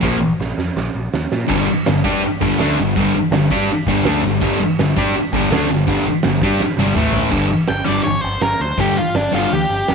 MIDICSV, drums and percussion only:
0, 0, Header, 1, 2, 480
1, 0, Start_track
1, 0, Key_signature, -2, "minor"
1, 0, Tempo, 365186
1, 32, Time_signature, 4, 2, 24, 8
1, 13076, End_track
2, 0, Start_track
2, 0, Title_t, "Drums"
2, 35, Note_on_c, 9, 36, 114
2, 50, Note_on_c, 9, 82, 89
2, 61, Note_on_c, 9, 38, 66
2, 167, Note_off_c, 9, 36, 0
2, 181, Note_off_c, 9, 82, 0
2, 192, Note_off_c, 9, 38, 0
2, 297, Note_on_c, 9, 82, 76
2, 411, Note_off_c, 9, 82, 0
2, 411, Note_on_c, 9, 82, 25
2, 524, Note_off_c, 9, 82, 0
2, 524, Note_on_c, 9, 82, 100
2, 537, Note_on_c, 9, 38, 67
2, 655, Note_off_c, 9, 82, 0
2, 662, Note_on_c, 9, 82, 28
2, 669, Note_off_c, 9, 38, 0
2, 746, Note_off_c, 9, 82, 0
2, 746, Note_on_c, 9, 82, 70
2, 772, Note_on_c, 9, 38, 65
2, 866, Note_off_c, 9, 82, 0
2, 866, Note_on_c, 9, 82, 28
2, 903, Note_off_c, 9, 38, 0
2, 988, Note_off_c, 9, 82, 0
2, 988, Note_on_c, 9, 82, 91
2, 1013, Note_on_c, 9, 38, 91
2, 1120, Note_off_c, 9, 82, 0
2, 1145, Note_off_c, 9, 38, 0
2, 1234, Note_on_c, 9, 82, 67
2, 1354, Note_off_c, 9, 82, 0
2, 1354, Note_on_c, 9, 82, 27
2, 1473, Note_off_c, 9, 82, 0
2, 1473, Note_on_c, 9, 82, 89
2, 1494, Note_on_c, 9, 38, 106
2, 1604, Note_off_c, 9, 82, 0
2, 1625, Note_off_c, 9, 38, 0
2, 1728, Note_on_c, 9, 82, 67
2, 1731, Note_on_c, 9, 38, 85
2, 1840, Note_off_c, 9, 82, 0
2, 1840, Note_on_c, 9, 82, 25
2, 1862, Note_off_c, 9, 38, 0
2, 1957, Note_on_c, 9, 49, 127
2, 1967, Note_on_c, 9, 36, 109
2, 1971, Note_off_c, 9, 82, 0
2, 2088, Note_off_c, 9, 49, 0
2, 2099, Note_off_c, 9, 36, 0
2, 2106, Note_on_c, 9, 38, 35
2, 2238, Note_off_c, 9, 38, 0
2, 2438, Note_on_c, 9, 46, 66
2, 2449, Note_on_c, 9, 38, 122
2, 2570, Note_off_c, 9, 46, 0
2, 2580, Note_off_c, 9, 38, 0
2, 2685, Note_on_c, 9, 36, 118
2, 2704, Note_on_c, 9, 38, 35
2, 2817, Note_off_c, 9, 36, 0
2, 2836, Note_off_c, 9, 38, 0
2, 2916, Note_on_c, 9, 46, 65
2, 3047, Note_off_c, 9, 46, 0
2, 3172, Note_on_c, 9, 36, 112
2, 3304, Note_off_c, 9, 36, 0
2, 3401, Note_on_c, 9, 46, 66
2, 3412, Note_on_c, 9, 38, 127
2, 3533, Note_off_c, 9, 46, 0
2, 3543, Note_off_c, 9, 38, 0
2, 3893, Note_on_c, 9, 36, 123
2, 3902, Note_on_c, 9, 46, 61
2, 4024, Note_off_c, 9, 36, 0
2, 4034, Note_off_c, 9, 46, 0
2, 4355, Note_on_c, 9, 46, 71
2, 4366, Note_on_c, 9, 38, 125
2, 4487, Note_off_c, 9, 46, 0
2, 4497, Note_off_c, 9, 38, 0
2, 4605, Note_on_c, 9, 36, 111
2, 4737, Note_off_c, 9, 36, 0
2, 4852, Note_on_c, 9, 46, 73
2, 4983, Note_off_c, 9, 46, 0
2, 5084, Note_on_c, 9, 36, 107
2, 5216, Note_off_c, 9, 36, 0
2, 5316, Note_on_c, 9, 46, 69
2, 5326, Note_on_c, 9, 38, 125
2, 5447, Note_off_c, 9, 46, 0
2, 5458, Note_off_c, 9, 38, 0
2, 5790, Note_on_c, 9, 49, 106
2, 5792, Note_on_c, 9, 82, 105
2, 5803, Note_on_c, 9, 36, 115
2, 5922, Note_off_c, 9, 49, 0
2, 5924, Note_off_c, 9, 82, 0
2, 5934, Note_off_c, 9, 36, 0
2, 5942, Note_on_c, 9, 38, 33
2, 6038, Note_on_c, 9, 82, 84
2, 6073, Note_off_c, 9, 38, 0
2, 6169, Note_off_c, 9, 82, 0
2, 6289, Note_on_c, 9, 46, 69
2, 6297, Note_on_c, 9, 82, 109
2, 6300, Note_on_c, 9, 38, 120
2, 6421, Note_off_c, 9, 46, 0
2, 6428, Note_off_c, 9, 82, 0
2, 6431, Note_off_c, 9, 38, 0
2, 6527, Note_on_c, 9, 82, 74
2, 6528, Note_on_c, 9, 36, 109
2, 6557, Note_on_c, 9, 38, 34
2, 6658, Note_off_c, 9, 82, 0
2, 6659, Note_off_c, 9, 36, 0
2, 6689, Note_off_c, 9, 38, 0
2, 6750, Note_on_c, 9, 82, 100
2, 6775, Note_on_c, 9, 46, 66
2, 6882, Note_off_c, 9, 82, 0
2, 6906, Note_off_c, 9, 46, 0
2, 6988, Note_on_c, 9, 82, 78
2, 7005, Note_on_c, 9, 36, 104
2, 7120, Note_off_c, 9, 82, 0
2, 7137, Note_off_c, 9, 36, 0
2, 7232, Note_on_c, 9, 82, 92
2, 7249, Note_on_c, 9, 46, 68
2, 7259, Note_on_c, 9, 38, 127
2, 7364, Note_off_c, 9, 82, 0
2, 7380, Note_off_c, 9, 46, 0
2, 7391, Note_off_c, 9, 38, 0
2, 7461, Note_on_c, 9, 82, 71
2, 7592, Note_off_c, 9, 82, 0
2, 7727, Note_on_c, 9, 46, 64
2, 7728, Note_on_c, 9, 36, 115
2, 7728, Note_on_c, 9, 82, 89
2, 7845, Note_on_c, 9, 38, 32
2, 7859, Note_off_c, 9, 46, 0
2, 7859, Note_off_c, 9, 82, 0
2, 7860, Note_off_c, 9, 36, 0
2, 7976, Note_on_c, 9, 82, 69
2, 7977, Note_off_c, 9, 38, 0
2, 8107, Note_off_c, 9, 82, 0
2, 8178, Note_on_c, 9, 46, 63
2, 8189, Note_on_c, 9, 38, 127
2, 8227, Note_on_c, 9, 82, 97
2, 8310, Note_off_c, 9, 46, 0
2, 8320, Note_off_c, 9, 38, 0
2, 8359, Note_off_c, 9, 82, 0
2, 8433, Note_on_c, 9, 36, 118
2, 8564, Note_off_c, 9, 36, 0
2, 8679, Note_on_c, 9, 38, 75
2, 8683, Note_on_c, 9, 82, 99
2, 8811, Note_off_c, 9, 38, 0
2, 8814, Note_off_c, 9, 82, 0
2, 8897, Note_on_c, 9, 48, 71
2, 8930, Note_on_c, 9, 82, 83
2, 9028, Note_off_c, 9, 48, 0
2, 9062, Note_off_c, 9, 82, 0
2, 9128, Note_on_c, 9, 45, 110
2, 9151, Note_on_c, 9, 82, 100
2, 9260, Note_off_c, 9, 45, 0
2, 9282, Note_off_c, 9, 82, 0
2, 9368, Note_on_c, 9, 43, 90
2, 9399, Note_on_c, 9, 82, 77
2, 9499, Note_off_c, 9, 43, 0
2, 9531, Note_off_c, 9, 82, 0
2, 9602, Note_on_c, 9, 49, 122
2, 9616, Note_on_c, 9, 36, 122
2, 9629, Note_on_c, 9, 82, 82
2, 9734, Note_off_c, 9, 49, 0
2, 9747, Note_off_c, 9, 36, 0
2, 9760, Note_off_c, 9, 82, 0
2, 9860, Note_on_c, 9, 82, 107
2, 9988, Note_off_c, 9, 82, 0
2, 9988, Note_on_c, 9, 82, 32
2, 10078, Note_on_c, 9, 46, 60
2, 10088, Note_on_c, 9, 38, 122
2, 10091, Note_off_c, 9, 82, 0
2, 10091, Note_on_c, 9, 82, 83
2, 10209, Note_off_c, 9, 46, 0
2, 10220, Note_off_c, 9, 38, 0
2, 10222, Note_off_c, 9, 82, 0
2, 10313, Note_on_c, 9, 82, 104
2, 10335, Note_on_c, 9, 38, 32
2, 10445, Note_off_c, 9, 82, 0
2, 10466, Note_off_c, 9, 38, 0
2, 10574, Note_on_c, 9, 46, 65
2, 10586, Note_on_c, 9, 82, 78
2, 10706, Note_off_c, 9, 46, 0
2, 10718, Note_off_c, 9, 82, 0
2, 10810, Note_on_c, 9, 82, 98
2, 10941, Note_off_c, 9, 82, 0
2, 11049, Note_on_c, 9, 82, 78
2, 11050, Note_on_c, 9, 46, 58
2, 11061, Note_on_c, 9, 38, 118
2, 11180, Note_off_c, 9, 82, 0
2, 11182, Note_off_c, 9, 46, 0
2, 11192, Note_off_c, 9, 38, 0
2, 11286, Note_on_c, 9, 82, 92
2, 11417, Note_off_c, 9, 82, 0
2, 11537, Note_on_c, 9, 36, 116
2, 11540, Note_on_c, 9, 46, 62
2, 11550, Note_on_c, 9, 82, 73
2, 11669, Note_off_c, 9, 36, 0
2, 11671, Note_off_c, 9, 46, 0
2, 11681, Note_off_c, 9, 82, 0
2, 11763, Note_on_c, 9, 82, 102
2, 11894, Note_off_c, 9, 82, 0
2, 11905, Note_on_c, 9, 82, 30
2, 12015, Note_on_c, 9, 46, 60
2, 12025, Note_off_c, 9, 82, 0
2, 12025, Note_on_c, 9, 38, 114
2, 12025, Note_on_c, 9, 82, 88
2, 12146, Note_off_c, 9, 46, 0
2, 12156, Note_off_c, 9, 38, 0
2, 12157, Note_off_c, 9, 82, 0
2, 12266, Note_on_c, 9, 82, 92
2, 12398, Note_off_c, 9, 82, 0
2, 12505, Note_on_c, 9, 46, 70
2, 12524, Note_on_c, 9, 82, 73
2, 12636, Note_off_c, 9, 46, 0
2, 12655, Note_off_c, 9, 82, 0
2, 12739, Note_on_c, 9, 82, 98
2, 12870, Note_off_c, 9, 82, 0
2, 12977, Note_on_c, 9, 82, 77
2, 12980, Note_on_c, 9, 46, 66
2, 12991, Note_on_c, 9, 38, 119
2, 13076, Note_off_c, 9, 38, 0
2, 13076, Note_off_c, 9, 46, 0
2, 13076, Note_off_c, 9, 82, 0
2, 13076, End_track
0, 0, End_of_file